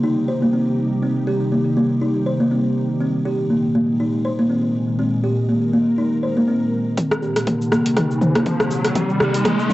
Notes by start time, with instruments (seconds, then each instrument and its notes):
Already playing: ambient pad C3 D#3 G3 D#4 G4
0.03 kalimba D#4
0.28 kalimba C5
0.42 kalimba A#3
0.53 kalimba C4
1.02 kalimba C4
1.27 kalimba G4
1.52 kalimba A#3
1.77 kalimba A#3
2.02 kalimba D#4
2.26 kalimba C5
2.40 kalimba A#3
2.51 kalimba C4
3.01 ambient pad A#2 G#3, kalimba C4
3.26 kalimba G4
3.50 kalimba A#3
3.75 kalimba A#3
4.00 kalimba D#4
4.25 kalimba C5
4.39 kalimba A#3
4.50 kalimba C4
4.99 kalimba C4, ambient pad A#4
5.24 kalimba G4
5.49 kalimba A#3
5.73 kalimba A#3
5.98 kalimba D#4
6.23 kalimba C5
6.37 kalimba A#3
6.48 kalimba C4
6.97 ambient pad C3 D#3 G3 D#4 G4, kalimba C4, kick, closed hi-hat, mid tom, riser, cabasa
7.11 cross-stick, cabasa
7.22 kalimba G4, cabasa
7.36 cross-stick, closed hi-hat, cabasa
7.47 kalimba A#3, kick, closed hi-hat, mid tom, cabasa
7.61 cabasa
7.72 kalimba A#3, cross-stick, cabasa
7.86 closed hi-hat, cabasa
7.97 kalimba D#4, kick, cross-stick, closed hi-hat, mid tom, cabasa
8.11 cabasa
8.21 kalimba C5, mid tom, cabasa
8.35 kalimba A#3, cross-stick, closed hi-hat, cabasa
8.46 kalimba C4, kick, closed hi-hat, mid tom, cabasa
8.60 cross-stick, cabasa
8.71 cabasa
8.85 cross-stick, closed hi-hat, cabasa
8.96 kalimba C4, kick, closed hi-hat, mid tom, cabasa
9.10 cabasa
9.20 kalimba G4, cross-stick, cabasa
9.35 closed hi-hat, cabasa
9.45 kalimba A#3, kick, cross-stick, closed hi-hat, mid tom, cabasa
9.60 cabasa
9.70 kalimba A#3, mid tom, cabasa